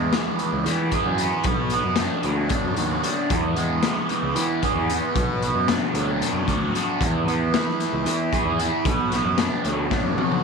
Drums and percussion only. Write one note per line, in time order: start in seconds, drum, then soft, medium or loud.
0.13 snare loud
0.13 closed hi-hat medium
0.13 low conga medium
0.27 high conga medium
0.39 closed hi-hat medium
0.66 snare soft
0.66 closed hi-hat medium
0.66 low conga medium
0.92 kick medium
0.92 closed hi-hat medium
0.92 high conga medium
1.06 low conga medium
1.18 closed hi-hat medium
1.44 kick loud
1.44 closed hi-hat medium
1.44 high conga medium
1.70 closed hi-hat medium
1.96 snare loud
1.96 closed hi-hat medium
1.96 low conga medium
2.11 high conga medium
2.23 closed hi-hat medium
2.49 kick loud
2.49 closed hi-hat medium
2.49 low conga medium
2.77 closed hi-hat medium
2.77 high conga medium
2.77 low conga soft
2.91 low conga medium
3.04 closed hi-hat medium
3.30 kick loud
3.30 closed hi-hat medium
3.30 high conga medium
3.30 low conga soft
3.43 low conga medium
3.56 closed hi-hat medium
3.83 snare loud
3.83 closed hi-hat medium
3.83 low conga medium
3.96 high conga medium
4.09 closed hi-hat medium
4.36 closed hi-hat medium
4.36 low conga medium
4.62 kick medium
4.62 closed hi-hat medium
4.62 high conga medium
4.76 low conga medium
4.90 closed hi-hat medium
5.15 kick loud
5.15 closed hi-hat medium
5.15 high conga medium
5.15 low conga soft
5.28 low conga medium
5.42 closed hi-hat medium
5.68 snare loud
5.68 closed hi-hat medium
5.68 low conga medium
5.82 high conga medium
5.95 closed hi-hat medium
6.21 closed hi-hat medium
6.21 low conga medium
6.48 kick medium
6.48 closed hi-hat medium
6.48 high conga medium
6.61 low conga medium
6.75 closed hi-hat medium
7.01 kick loud
7.01 closed hi-hat medium
7.01 high conga medium
7.01 low conga soft
7.15 low conga medium
7.28 closed hi-hat medium
7.54 snare loud
7.54 closed hi-hat medium
7.54 low conga medium
7.68 high conga medium
7.80 snare soft
7.80 closed hi-hat medium
8.06 closed hi-hat medium
8.06 low conga medium
8.33 kick medium
8.33 closed hi-hat medium
8.33 high conga medium
8.45 low conga medium
8.59 closed hi-hat medium
8.85 kick loud
8.85 closed hi-hat medium
8.85 high conga medium
8.99 low conga medium
9.12 snare soft
9.12 closed hi-hat medium
9.12 low conga soft
9.25 low conga soft
9.38 snare loud
9.38 closed hi-hat medium
9.38 low conga medium
9.51 high conga medium
9.65 closed hi-hat medium
9.91 kick loud
9.91 snare medium
9.91 low conga medium
10.18 high tom medium
10.18 high conga medium
10.18 low conga soft
10.31 mid tom medium
10.31 low conga medium